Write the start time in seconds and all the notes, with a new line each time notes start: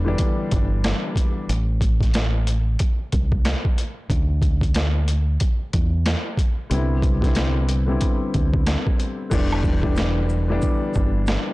Already playing: E1 D3 E3 G3 B3 D4
0.04 D3 E3 G3 B3 D4
0.18 kick, closed hi-hat
0.51 G1, kick, closed hi-hat
0.84 cross-stick, snare, closed hi-hat
1.16 kick, closed hi-hat
1.49 A1, closed hi-hat
1.81 kick, closed hi-hat
2.01 kick, snare, closed hi-hat
2.14 cross-stick, snare, closed hi-hat
2.47 closed hi-hat
2.79 kick, closed hi-hat
3.12 C2, kick, closed hi-hat
3.32 kick
3.45 cross-stick, snare, closed hi-hat
3.65 kick
3.78 closed hi-hat
4.10 D2, kick, closed hi-hat
4.42 kick, closed hi-hat
4.61 kick, closed hi-hat
4.74 cross-stick, snare, closed hi-hat
5.08 closed hi-hat
5.40 kick, closed hi-hat
5.73 E2, kick, closed hi-hat
6.06 cross-stick, snare, closed hi-hat
6.37 kick, closed hi-hat
6.70 C2 D3 G3 B3 C4 E4, closed hi-hat
7.02 kick, closed hi-hat
7.21 D3 G3 B3 C4 E4, kick, snare, closed hi-hat
7.35 cross-stick, snare, closed hi-hat
7.69 closed hi-hat
7.86 D3 G3 B3 C4 E4
8.01 kick, closed hi-hat
8.34 D2, kick, closed hi-hat
8.54 kick
8.67 cross-stick, snare, closed hi-hat
8.87 kick
9.00 closed hi-hat
9.30 E1 D3 E3 G3 B3 D4, kick, crash, maracas
9.52 high woodblock
9.63 kick, maracas
9.81 D3 E3 G3 B3 D4, kick
9.96 cross-stick, snare, maracas
10.29 maracas
10.48 D3 E3 G3 B3 D4
10.62 kick, maracas
10.94 G1, kick, maracas
11.27 cross-stick, snare, maracas